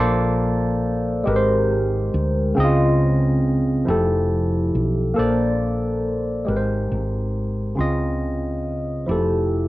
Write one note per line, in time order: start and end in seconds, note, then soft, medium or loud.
0.00 1.22 A#1 loud
0.00 0.74 A#3 loud
0.00 0.75 A4 medium
0.00 0.76 C5 medium
0.00 0.77 D5 loud
1.24 2.09 G#1 loud
1.24 2.05 G#3 medium
1.24 2.05 G4 medium
1.24 2.06 A#4 medium
1.29 1.34 B4 medium
1.36 2.11 C5 medium
2.14 2.53 D2 medium
2.55 3.83 C#2 loud
2.55 3.35 C#3 medium
2.55 3.36 C4 medium
2.55 2.63 D#4 medium
2.60 3.38 D#5 loud
2.64 3.40 F4 medium
3.85 4.70 F1 loud
3.85 4.66 F3 medium
3.85 4.66 E4 medium
3.85 4.67 G4 medium
3.90 4.68 A4 medium
4.75 5.13 B1 medium
5.14 5.95 A#3 medium
5.14 5.96 A4 medium
5.14 5.97 C5 medium
5.18 6.44 A#1 medium
5.18 5.98 D5 medium
6.45 6.87 G#1 medium
6.45 7.26 G#3 medium
6.45 7.27 G4 medium
6.45 7.28 A#4 medium
6.50 6.55 B4 medium
6.56 7.32 C5 medium
6.92 7.74 G#1 medium
7.75 9.05 C#2 medium
7.75 8.56 C#3 medium
7.75 8.57 C4 medium
7.75 8.58 F4 medium
7.81 8.59 D#5 medium
9.06 9.68 F1 loud
9.06 9.68 F3 medium
9.06 9.68 E4 medium
9.06 9.68 G4 medium
9.11 9.68 A4 medium